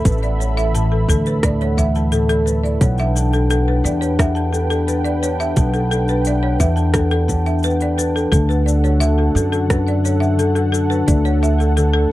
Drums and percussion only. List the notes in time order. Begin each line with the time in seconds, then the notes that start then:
0.05 kick, open hi-hat, cabasa
0.12 cabasa
0.18 cabasa
0.23 open hi-hat, cabasa
0.41 cabasa
0.58 open hi-hat, cabasa
0.75 open hi-hat, cabasa
1.09 kick, cabasa
1.26 open hi-hat, cabasa
1.43 kick, cross-stick, open hi-hat, cabasa
1.61 open hi-hat
1.77 kick, cabasa
1.95 open hi-hat, cabasa
2.12 open hi-hat, cabasa
2.29 open hi-hat
2.47 cabasa
2.65 cabasa
2.81 kick, open hi-hat, cabasa
2.98 open hi-hat, cabasa
3.16 cabasa
3.33 open hi-hat, cabasa
3.50 open hi-hat, cabasa
3.86 cabasa
4.02 open hi-hat, cabasa
4.19 kick, cross-stick, open hi-hat, cabasa
4.36 open hi-hat
4.54 cabasa
4.70 open hi-hat, cabasa
4.88 open hi-hat, cabasa
5.05 open hi-hat
5.23 cabasa
5.40 cabasa
5.56 kick, open hi-hat, cabasa
5.74 open hi-hat, cabasa
5.92 cabasa
6.08 open hi-hat, cabasa
6.25 open hi-hat, cabasa
6.60 kick, cabasa
6.77 open hi-hat, cabasa
6.94 kick, cross-stick, open hi-hat, cabasa
7.11 open hi-hat
7.29 kick, cabasa
7.46 open hi-hat, cabasa
7.59 cabasa
7.63 open hi-hat, cabasa
7.80 open hi-hat
7.99 cabasa
8.17 cabasa
8.32 kick, open hi-hat, cabasa
8.50 open hi-hat, cabasa
8.68 cabasa
8.84 open hi-hat, cabasa
9.01 open hi-hat, cabasa
9.36 cabasa
9.53 open hi-hat, cabasa
9.70 kick, cross-stick, open hi-hat, cabasa
9.88 open hi-hat
10.05 cabasa
10.22 open hi-hat, cabasa
10.39 open hi-hat, cabasa
10.56 open hi-hat
10.74 cabasa
10.91 cabasa
11.08 kick, open hi-hat, cabasa
11.25 open hi-hat, cabasa
11.43 cabasa
11.60 open hi-hat, cabasa
11.77 open hi-hat, cabasa